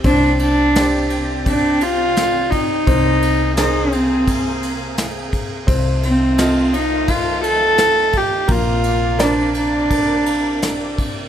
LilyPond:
<<
  \new Staff \with { instrumentName = "Grand piano" } { \time 4/4 \key c \minor \tempo 4 = 85 c'4 <g' c'' d''>2. | c'4 <aes' bes' c''>2. | c'4 <f' a' ees''>2. | bes4 <bes' c'' d''>2. | }
  \new Staff \with { instrumentName = "Cello" } { \time 4/4 \key c \minor d'8 d'4 r8 d'8 f'4 ees'8~ | ees'4 ees'8 c'4 r4. | r8 c'4 ees'8 f'8 a'4 g'8 | f'4 d'8 d'2 r8 | }
  \new Staff \with { instrumentName = "String section" } { \time 4/4 \key c \minor <c c' g'>1 | <c bes aes'>1 | <ees a f'>1 | <c bes d''>1 | }
  \new Staff \with { instrumentName = "Fretless electric bass" } { \clef bass \time 4/4 \key c \minor c,1 | c,1 | c,1 | bes,,1 | }
  \new DrumStaff \with { instrumentName = "Drums" } \drummode { \time 4/4 <bd cymr>8 cymr8 <cymr sn>8 cymr8 <bd cymr>8 cymr8 <cymr sn>8 <bd cymr>8 | <bd cymr>8 cymr8 <cymr sn>8 cymr8 <bd cymr>8 cymr8 <cymr sn>8 <bd cymr>8 | <bd cymr>8 cymr8 <cymr sn>8 cymr8 <bd cymr>8 cymr8 <cymr sn>8 <bd cymr>8 | <bd cymr>8 cymr8 <cymr sn>8 cymr8 <bd cymr>8 cymr8 <cymr sn>8 <bd cymr>8 | }
>>